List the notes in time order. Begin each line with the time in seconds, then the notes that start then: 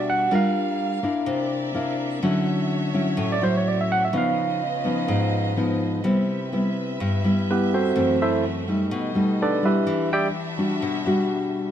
Already playing: B2 G3 D4 F#4 E5
0.10 F#5
0.31 G3 A#3 D4 F4 A#4 F5
0.35 F5
1.03 A#3 D4 E4
1.26 C3 C4 A#4 D5 E5
1.74 A#3 D4 E4
2.23 D3 F#3 C#4 E4 F#4 C#5
2.94 F#3 C#4 E4
3.17 A2
3.32 D5
3.41 F#3 C#4 E4 C5
3.57 C#5
3.68 D5
3.81 E5
3.92 F#5
4.05 E5
4.13 C#3 F3 B3 C#4 D#4 F4 B4 D#5
4.18 F5
4.84 F3 B3 D#4
5.08 G#2
5.57 F3 B3 D#4
6.04 C3 G3 B3 E4 B4 E5
6.52 G3 B3 E4
7.00 G2
7.24 G3 B3 E4
7.51 B3 E4 G4 B4
7.74 C4 F#4 A4 C5
7.96 F#2 E3 A3 C4 F#4
8.22 E4 A4 C5 E5
8.68 G3 A3 D#4
8.91 B2 B3 A4 D#5
9.15 G3 A3 D#4
9.42 D4 A4 B4 D5
9.63 G3 D4 E4 G4 B4 E5
9.87 E3 D4 F#4 E5
10.13 G4 D5 E5 G5
10.58 G3 D4 F#4
10.82 B2
11.06 G3 D4 F#4